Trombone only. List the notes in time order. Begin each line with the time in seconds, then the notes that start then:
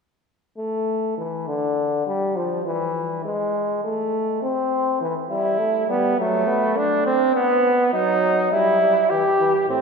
0.58 A3
1.18 E3
1.48 D3
2.06 G3
2.36 F3
2.65 E3
3.25 G#3
3.84 A3
4.42 C4
5.01 E3
5.30 G3
5.58 A3
5.88 G3
6.18 F#3
6.47 B3
6.76 A3
7.35 B3
7.93 F#3
8.52 G3
8.81 G3
9.11 E3
9.39 E3
9.69 A2